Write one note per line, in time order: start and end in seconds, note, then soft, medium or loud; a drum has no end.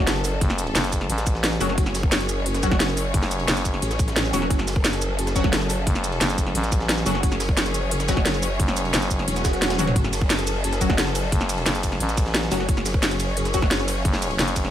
0.00 0.40 F#1 loud
0.00 14.71 F#3 medium
0.00 14.71 C#4 medium
0.00 14.71 G#4 medium
0.00 1.77 A4 medium
0.00 impact medium
0.07 snare loud
0.07 closed hi-hat loud
0.07 ride medium
0.16 snare medium
0.16 shaker soft
0.24 snare soft
0.24 open hi-hat medium
0.24 ride medium
0.24 shaker medium
0.41 0.74 F#1 loud
0.41 kick loud
0.41 closed hi-hat medium
0.41 ride medium
0.50 snare medium
0.50 shaker soft
0.58 closed hi-hat medium
0.58 ride medium
0.58 shaker medium
0.67 ride soft
0.75 1.08 F#1 loud
0.75 snare loud
0.75 closed hi-hat medium
0.75 ride medium
0.84 snare soft
0.84 closed hi-hat soft
0.84 shaker soft
0.93 kick medium
0.93 closed hi-hat medium
0.93 ride medium
0.93 shaker medium
1.01 snare soft
1.10 1.59 A1 loud
1.10 closed hi-hat loud
1.10 ride medium
1.18 snare soft
1.18 closed hi-hat soft
1.18 shaker soft
1.27 kick loud
1.27 closed hi-hat medium
1.27 ride medium
1.27 shaker medium
1.35 snare soft
1.44 snare loud
1.44 closed hi-hat medium
1.44 ride medium
1.52 snare soft
1.52 shaker soft
1.61 1.76 F#1 loud
1.61 1.73 F#3 medium
1.61 1.73 C#4 medium
1.61 1.73 F#4 medium
1.61 snare medium
1.61 snare soft
1.61 open hi-hat medium
1.61 ride medium
1.61 shaker medium
1.69 snare soft
1.78 3.13 F#1 loud
1.78 4.49 C#5 medium
1.78 kick loud
1.78 closed hi-hat medium
1.78 ride medium
1.86 snare medium
1.86 shaker soft
1.95 snare medium
1.95 closed hi-hat medium
1.95 open hi-hat medium
1.95 shaker medium
2.03 kick loud
2.12 snare loud
2.12 closed hi-hat medium
2.12 ride medium
2.20 snare soft
2.20 closed hi-hat soft
2.20 shaker soft
2.29 closed hi-hat medium
2.29 ride medium
2.29 shaker medium
2.46 closed hi-hat medium
2.46 ride medium
2.54 snare medium
2.54 closed hi-hat soft
2.54 shaker soft
2.63 2.71 F#3 medium
2.63 2.71 C#4 medium
2.63 2.71 F#4 medium
2.63 kick medium
2.63 closed hi-hat medium
2.63 ride medium
2.63 shaker medium
2.72 kick loud
2.72 snare medium
2.80 snare loud
2.80 closed hi-hat medium
2.80 ride medium
2.88 snare medium
2.88 shaker soft
2.97 snare soft
2.97 open hi-hat medium
2.97 ride medium
2.97 shaker medium
3.14 3.47 F#1 loud
3.14 kick loud
3.14 closed hi-hat medium
3.14 ride medium
3.23 snare soft
3.23 shaker soft
3.31 closed hi-hat medium
3.31 ride medium
3.31 shaker medium
3.40 ride soft
3.48 3.81 F#1 loud
3.48 snare loud
3.48 closed hi-hat medium
3.48 ride medium
3.57 snare soft
3.57 closed hi-hat soft
3.57 shaker soft
3.65 kick medium
3.65 closed hi-hat medium
3.65 ride medium
3.65 shaker medium
3.74 snare soft
3.82 4.32 A1 loud
3.82 closed hi-hat medium
3.82 ride medium
3.91 snare soft
3.91 closed hi-hat soft
3.91 shaker soft
3.99 kick loud
3.99 closed hi-hat medium
3.99 ride medium
3.99 shaker medium
4.08 snare medium
4.08 closed hi-hat soft
4.16 snare loud
4.16 closed hi-hat medium
4.16 ride medium
4.25 snare soft
4.25 shaker soft
4.33 4.49 E1 loud
4.33 4.46 F#3 medium
4.33 4.46 C#4 medium
4.33 4.46 F#4 medium
4.33 snare medium
4.33 snare soft
4.33 open hi-hat medium
4.33 ride medium
4.33 shaker medium
4.42 snare soft
4.50 5.85 F#1 loud
4.50 7.22 A4 medium
4.50 kick loud
4.50 closed hi-hat medium
4.50 ride medium
4.59 snare soft
4.59 shaker soft
4.68 snare medium
4.68 closed hi-hat medium
4.68 open hi-hat medium
4.68 shaker medium
4.76 kick loud
4.85 snare loud
4.85 closed hi-hat medium
4.85 ride medium
4.93 snare soft
4.93 closed hi-hat soft
4.93 shaker soft
5.02 closed hi-hat medium
5.02 ride medium
5.02 shaker medium
5.19 closed hi-hat medium
5.19 ride medium
5.27 snare medium
5.27 closed hi-hat soft
5.27 shaker soft
5.36 5.43 F#3 medium
5.36 5.43 C#4 medium
5.36 5.43 F#4 medium
5.36 kick medium
5.36 closed hi-hat medium
5.36 ride medium
5.36 shaker medium
5.44 kick loud
5.44 snare medium
5.53 snare loud
5.53 closed hi-hat medium
5.53 ride medium
5.61 snare medium
5.61 shaker soft
5.70 snare soft
5.70 open hi-hat medium
5.70 ride medium
5.70 shaker medium
5.87 6.20 F#1 loud
5.87 kick loud
5.87 closed hi-hat medium
5.87 ride medium
5.95 snare soft
5.95 shaker soft
6.04 closed hi-hat medium
6.04 ride medium
6.04 shaker medium
6.12 ride soft
6.21 6.54 F#1 loud
6.21 snare loud
6.21 closed hi-hat medium
6.21 ride medium
6.29 snare soft
6.29 closed hi-hat soft
6.29 shaker soft
6.38 kick medium
6.38 closed hi-hat medium
6.38 ride medium
6.38 shaker medium
6.47 snare soft
6.55 7.05 A1 loud
6.55 closed hi-hat loud
6.55 ride medium
6.64 snare soft
6.64 closed hi-hat soft
6.64 shaker soft
6.72 kick loud
6.72 closed hi-hat medium
6.72 ride medium
6.72 shaker medium
6.81 snare soft
6.89 snare loud
6.89 closed hi-hat medium
6.89 ride medium
6.98 snare soft
6.98 shaker soft
7.06 7.22 F#1 loud
7.06 7.18 F#3 medium
7.06 7.18 C#4 medium
7.06 7.18 F#4 medium
7.06 snare medium
7.06 snare soft
7.06 open hi-hat medium
7.06 ride medium
7.06 shaker medium
7.15 snare soft
7.23 8.58 F#1 loud
7.23 9.95 C#5 medium
7.23 kick loud
7.23 closed hi-hat loud
7.23 ride medium
7.32 snare soft
7.32 shaker soft
7.40 snare medium
7.40 closed hi-hat medium
7.40 open hi-hat medium
7.40 shaker medium
7.49 kick loud
7.57 snare loud
7.57 closed hi-hat medium
7.57 ride medium
7.66 snare soft
7.66 closed hi-hat soft
7.66 shaker soft
7.74 closed hi-hat medium
7.74 ride medium
7.74 shaker medium
7.91 closed hi-hat loud
7.91 ride medium
8.00 snare medium
8.00 closed hi-hat soft
8.00 shaker soft
8.08 8.16 F#3 medium
8.08 8.16 C#4 medium
8.08 8.16 F#4 medium
8.08 kick medium
8.08 snare loud
8.08 closed hi-hat medium
8.08 ride medium
8.08 shaker medium
8.17 kick loud
8.17 snare medium
8.25 snare loud
8.25 closed hi-hat loud
8.25 ride medium
8.34 snare medium
8.34 shaker soft
8.43 snare soft
8.43 open hi-hat medium
8.43 ride medium
8.43 shaker medium
8.60 8.92 F#1 loud
8.60 kick loud
8.60 closed hi-hat loud
8.60 ride medium
8.68 snare soft
8.68 shaker soft
8.77 closed hi-hat medium
8.77 ride medium
8.77 shaker medium
8.85 ride soft
8.94 9.26 F#1 loud
8.94 snare loud
8.94 closed hi-hat loud
8.94 ride medium
9.02 snare soft
9.02 closed hi-hat soft
9.02 shaker soft
9.11 kick medium
9.11 closed hi-hat medium
9.11 ride medium
9.11 shaker medium
9.19 snare soft
9.28 9.75 E1 loud
9.28 closed hi-hat loud
9.28 ride medium
9.28 swell medium
9.36 snare soft
9.36 closed hi-hat soft
9.36 shaker soft
9.45 kick loud
9.45 snare loud
9.45 closed hi-hat medium
9.45 ride medium
9.45 shaker medium
9.53 snare soft
9.53 closed hi-hat soft
9.62 snare loud
9.62 closed hi-hat loud
9.62 ride medium
9.70 snare loud
9.70 closed hi-hat soft
9.70 high tom medium
9.70 ride medium
9.70 shaker soft
9.75 9.95 D#1 loud
9.79 9.91 F#3 medium
9.79 9.91 C#4 medium
9.79 9.91 F#4 medium
9.79 snare soft
9.79 open hi-hat medium
9.79 mid tom medium
9.79 shaker medium
9.87 snare soft
9.87 mid tom medium
9.87 ride medium
9.96 11.31 F#1 loud
9.96 12.68 A4 medium
9.96 kick loud
9.96 closed hi-hat loud
9.96 ride medium
10.04 snare medium
10.04 shaker soft
10.13 snare medium
10.13 closed hi-hat medium
10.13 open hi-hat medium
10.13 ride medium
10.13 shaker medium
10.21 kick loud
10.30 snare loud
10.30 closed hi-hat loud
10.30 ride medium
10.39 snare soft
10.39 closed hi-hat soft
10.39 shaker soft
10.47 closed hi-hat medium
10.47 ride medium
10.47 shaker medium
10.64 closed hi-hat loud
10.64 ride medium
10.73 snare medium
10.73 closed hi-hat soft
10.73 shaker soft
10.81 10.89 F#3 medium
10.81 10.89 C#4 medium
10.81 10.89 F#4 medium
10.81 kick medium
10.81 closed hi-hat medium
10.81 ride medium
10.81 shaker medium
10.90 kick loud
10.90 snare medium
10.98 snare loud
10.98 closed hi-hat loud
10.98 ride medium
11.07 snare medium
11.07 shaker soft
11.15 snare soft
11.15 open hi-hat medium
11.15 ride medium
11.15 shaker medium
11.32 11.65 F#1 loud
11.32 kick loud
11.32 closed hi-hat medium
11.32 ride medium
11.41 snare medium
11.41 shaker soft
11.49 closed hi-hat medium
11.49 ride medium
11.49 shaker medium
11.58 ride soft
11.66 11.99 F#1 loud
11.66 snare loud
11.66 closed hi-hat medium
11.66 ride medium
11.75 snare soft
11.75 closed hi-hat soft
11.75 shaker soft
11.83 kick medium
11.83 closed hi-hat medium
11.83 ride medium
11.83 shaker medium
11.92 snare soft
12.00 12.50 A1 loud
12.00 closed hi-hat loud
12.00 ride medium
12.09 snare soft
12.09 closed hi-hat soft
12.09 shaker soft
12.17 kick loud
12.17 closed hi-hat medium
12.17 ride medium
12.17 shaker medium
12.26 snare medium
12.34 snare loud
12.34 closed hi-hat loud
12.34 ride medium
12.43 snare soft
12.43 shaker soft
12.52 12.67 F#1 medium
12.52 12.64 F#3 medium
12.52 12.64 C#4 medium
12.52 12.64 F#4 medium
12.52 snare medium
12.52 snare soft
12.52 open hi-hat medium
12.52 ride medium
12.52 shaker medium
12.60 snare soft
12.69 14.04 F#1 loud
12.69 14.71 C#5 medium
12.69 kick loud
12.69 closed hi-hat medium
12.69 ride medium
12.77 snare soft
12.77 shaker soft
12.86 snare medium
12.86 closed hi-hat medium
12.86 open hi-hat medium
12.86 ride medium
12.86 shaker medium
12.94 kick loud
13.03 snare loud
13.03 closed hi-hat medium
13.03 ride medium
13.11 snare soft
13.11 closed hi-hat soft
13.11 shaker soft
13.20 closed hi-hat medium
13.20 ride medium
13.20 shaker medium
13.37 closed hi-hat medium
13.37 ride medium
13.45 snare medium
13.45 closed hi-hat soft
13.45 shaker soft
13.54 13.62 F#3 medium
13.54 13.61 C#4 medium
13.54 13.62 F#4 medium
13.54 kick medium
13.54 closed hi-hat medium
13.54 ride medium
13.54 shaker medium
13.62 kick loud
13.62 snare medium
13.71 snare loud
13.71 closed hi-hat medium
13.71 ride medium
13.79 snare medium
13.79 shaker soft
13.88 snare soft
13.88 open hi-hat medium
13.88 ride medium
13.88 shaker medium
14.05 14.38 F#1 loud
14.05 kick loud
14.05 closed hi-hat medium
14.05 ride medium
14.14 snare soft
14.14 shaker soft
14.22 closed hi-hat medium
14.22 ride medium
14.22 shaker medium
14.31 ride soft
14.39 14.71 F#1 loud
14.39 snare loud
14.39 closed hi-hat medium
14.39 ride medium
14.48 snare soft
14.48 closed hi-hat soft
14.48 shaker soft
14.56 kick medium
14.56 closed hi-hat medium
14.56 ride medium
14.56 shaker medium
14.65 snare soft